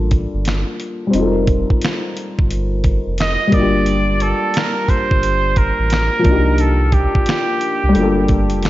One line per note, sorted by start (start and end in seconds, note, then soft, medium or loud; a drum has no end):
0.00 0.26 A1 medium
0.00 1.05 G3 medium
0.00 1.11 A#3 medium
0.00 1.10 D4 medium
0.00 1.12 F4 medium
0.00 1.13 A4 medium
0.11 kick medium
0.11 closed hi-hat medium
0.34 0.64 G1 loud
0.45 finger snap medium
0.45 snare loud
0.45 closed hi-hat medium
0.80 closed hi-hat medium
1.07 3.45 G3 medium
1.07 3.47 C4 medium
1.13 1.64 F1 loud
1.13 3.48 D#4 medium
1.13 3.50 F4 medium
1.13 closed hi-hat medium
1.21 1.26 A4 medium
1.27 3.55 A#4 medium
1.47 kick medium
1.47 closed hi-hat medium
1.70 kick medium
1.82 snare loud
1.82 closed hi-hat medium
1.86 finger snap loud
2.17 closed hi-hat medium
2.39 2.99 G1 medium
2.39 kick medium
2.51 closed hi-hat medium
2.84 kick medium
2.84 closed hi-hat medium
3.07 3.37 F1 medium
3.18 3.56 D#5 loud
3.18 finger snap medium
3.18 snare loud
3.18 closed hi-hat medium
3.47 6.19 G3 medium
3.47 6.20 A#3 medium
3.52 4.33 G1 medium
3.52 6.22 D4 medium
3.52 4.24 D5 loud
3.52 kick medium
3.52 closed hi-hat medium
3.57 6.24 F4 medium
3.57 6.25 G4 medium
3.86 closed hi-hat medium
4.20 4.58 A4 loud
4.20 closed hi-hat medium
4.54 4.91 A#4 medium
4.54 snare loud
4.54 closed hi-hat medium
4.58 finger snap medium
4.89 5.59 C5 loud
4.89 kick medium
4.89 closed hi-hat medium
5.11 5.72 G1 loud
5.11 kick medium
5.23 closed hi-hat medium
5.56 6.62 A#4 loud
5.56 kick medium
5.56 closed hi-hat medium
5.79 6.10 A1 medium
5.90 finger snap medium
5.90 snare loud
5.90 closed hi-hat medium
6.19 7.89 F3 medium
6.19 7.91 A#3 medium
6.25 7.06 C2 loud
6.25 7.92 D4 medium
6.25 kick loud
6.25 closed hi-hat medium
6.29 7.94 D#4 medium
6.29 7.96 G4 medium
6.58 6.95 A4 medium
6.58 closed hi-hat medium
6.92 8.70 G4 medium
6.92 kick medium
6.92 closed hi-hat medium
7.15 kick medium
7.26 snare loud
7.26 closed hi-hat medium
7.30 finger snap medium
7.61 closed hi-hat medium
7.84 7.94 C2 medium
7.89 8.70 G3 medium
7.89 8.03 A3 medium
7.95 8.53 G1 loud
7.95 8.70 A#3 medium
7.95 8.70 D4 medium
7.95 closed hi-hat medium
7.99 8.70 F4 medium
7.99 8.70 A4 medium
8.28 kick medium
8.28 closed hi-hat medium
8.50 8.70 F1 medium
8.50 closed hi-hat medium
8.63 finger snap medium
8.63 snare loud
8.63 closed hi-hat medium